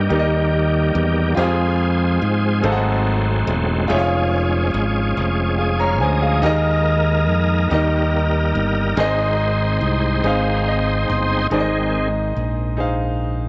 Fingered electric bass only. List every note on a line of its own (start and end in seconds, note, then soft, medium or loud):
0.10 0.91 D#2 medium
0.95 1.34 E2 medium
1.37 2.18 F2 loud
2.22 2.61 G#2 medium
2.64 3.44 G#1 loud
3.47 3.87 E1 loud
3.90 4.71 F1 loud
4.74 5.14 G#1 medium
5.17 6.01 F1 medium
6.01 6.41 D2 medium
6.43 7.28 D#2 loud
7.28 7.67 F2 medium
7.71 8.52 D#2 medium
8.55 8.94 G1 medium
8.97 9.78 G#1 loud
9.81 10.20 C2 medium
10.24 11.05 G#1 medium
11.10 11.48 G1 medium
11.51 12.32 G#1 medium
12.37 13.49 A#1 medium